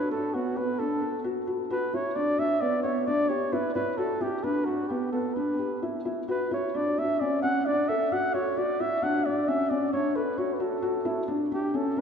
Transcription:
0.00 0.11 B4 medium
0.11 0.28 D4 medium
0.11 0.36 A4 medium
0.34 0.51 B3 medium
0.34 0.59 F#4 medium
0.56 0.73 B3 medium
0.56 0.80 B4 medium
0.79 0.96 D4 medium
0.79 1.24 A4 medium
1.02 1.19 A4 medium
1.24 1.41 F#4 medium
1.47 1.64 F#4 medium
1.70 1.87 F#4 medium
1.70 1.96 B4 medium
1.94 2.10 E4 medium
1.94 2.17 C#5 medium
2.15 2.32 D4 medium
2.15 2.41 D5 medium
2.38 2.55 D4 medium
2.38 2.62 E5 medium
2.61 2.78 B3 medium
2.61 2.83 D5 medium
2.83 3.01 B3 medium
2.83 3.07 C#5 medium
3.06 3.24 D4 medium
3.06 3.30 D5 medium
3.29 3.46 G4 medium
3.29 3.54 C#5 medium
3.53 3.69 E4 medium
3.53 3.74 B4 medium
3.75 3.92 E4 medium
3.75 3.99 B4 medium
3.98 4.15 F#4 medium
3.98 4.23 A4 medium
4.21 4.38 E4 medium
4.21 4.45 G4 medium
4.43 4.61 D4 medium
4.43 4.67 B4 medium
4.65 4.84 D4 medium
4.65 4.90 F#4 medium
4.88 5.07 B3 medium
4.88 5.12 G4 medium
5.12 5.30 B3 medium
5.12 5.36 A4 medium
5.34 5.53 D4 medium
5.34 5.81 B4 medium
5.59 5.76 G4 medium
5.82 5.99 E4 medium
6.05 6.22 E4 medium
6.28 6.45 F#4 medium
6.28 6.51 B4 medium
6.51 6.68 E4 medium
6.51 6.77 C#5 medium
6.75 6.92 D4 medium
6.75 7.00 D5 medium
6.98 7.15 D4 medium
6.98 7.22 E5 medium
7.20 7.37 C#4 medium
7.20 7.42 D5 medium
7.43 7.60 C#4 medium
7.43 7.67 F#5 medium
7.66 7.83 D4 medium
7.66 7.90 D5 medium
7.89 8.06 A4 medium
7.89 8.14 E5 medium
8.12 8.28 F#4 medium
8.12 8.36 F#5 medium
8.34 8.51 F#4 medium
8.34 8.59 C#5 medium
8.57 8.74 F#4 medium
8.57 8.82 D5 medium
8.80 8.97 E4 medium
8.80 9.05 E5 medium
9.02 9.19 D4 medium
9.02 9.27 F#5 medium
9.25 9.42 D4 medium
9.25 9.50 D5 medium
9.48 9.65 C#4 medium
9.48 9.71 E5 medium
9.70 9.87 C#4 medium
9.70 9.92 D5 medium
9.93 10.10 D4 medium
9.93 10.18 C#5 medium
10.15 10.32 A4 medium
10.15 10.40 B4 medium
10.38 10.55 F#4 medium
10.38 10.55 C#5 medium
10.54 10.63 B4 medium
10.60 10.77 F#4 medium
10.60 11.29 A4 medium
10.82 11.00 F#4 medium
11.05 11.22 E4 medium
11.28 11.45 D4 medium
11.51 11.68 D4 medium
11.51 11.77 G4 medium
11.74 11.91 C#4 medium
11.74 12.01 A4 medium
11.97 12.01 C#4 medium

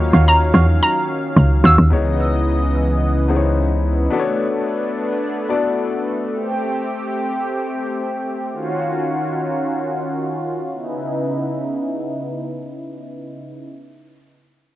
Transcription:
0.00 0.12 D#2 loud
0.00 1.89 D#3 medium
0.00 1.89 F#3 medium
0.00 1.87 A#3 medium
0.00 1.89 C#4 medium
0.00 1.87 D#4 medium
0.00 1.88 F4 medium
0.00 1.88 F#4 medium
0.00 1.91 C#5 medium
0.00 1.89 F5 medium
0.00 0.29 C#6 loud
0.13 0.53 D#2 loud
0.13 0.25 F#4 medium
0.13 0.25 C#5 medium
0.13 0.25 F5 medium
0.28 0.81 A#5 medium
0.54 0.81 E2 medium
0.54 0.66 F#4 medium
0.54 0.67 C#5 medium
0.54 0.67 F5 medium
0.83 1.67 A#5 medium
1.36 1.63 C#2 loud
1.64 1.78 D#2 loud
1.64 1.76 F#4 medium
1.64 1.77 C#5 medium
1.64 1.77 F5 medium
1.64 2.16 E6 medium
1.78 1.91 D#2 medium
1.90 4.08 C#2 medium
1.90 4.09 C#3 medium
1.90 4.09 E3 medium
1.90 3.26 B3 medium
1.90 4.09 B3 medium
1.90 3.26 D#4 medium
1.90 3.26 E4 medium
1.90 3.27 G#4 medium
1.90 3.27 C#5 medium
1.90 4.09 D#5 medium
3.28 4.09 B3 medium
3.28 4.12 D#4 medium
3.28 4.12 E4 medium
3.28 4.12 G#4 medium
3.28 3.36 C5 soft
3.36 4.15 C#5 medium
4.10 8.48 A3 medium
4.10 5.46 B3 medium
4.10 6.30 B3 medium
4.10 5.46 D4 medium
4.10 6.30 D4 medium
4.10 5.47 F#4 medium
4.10 5.47 A4 medium
4.10 4.19 B4 medium
4.19 5.50 C#5 medium
5.49 6.32 B3 medium
5.49 6.32 D4 medium
5.49 6.32 F#4 medium
5.49 6.32 A4 medium
5.49 6.32 D5 medium
6.32 8.50 C4 medium
6.32 8.50 G4 medium
8.52 10.70 D#3 medium
8.52 10.70 C#4 medium
8.52 10.70 F4 medium
8.52 10.70 F#4 medium
10.73 13.69 C#3 medium
10.73 13.69 B3 medium
10.73 13.69 D#4 medium
10.73 13.69 E4 medium

